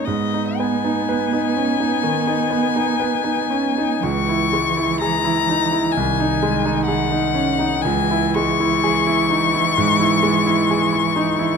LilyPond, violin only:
\new Staff \with { instrumentName = "Violin" } { \time 4/4 \key gis \minor \tempo 4 = 63 dis''8 gis''2.~ gis''8 | cis'''4 ais''4 gis''4 fis''4 | gis''8 cis'''2.~ cis'''8 | }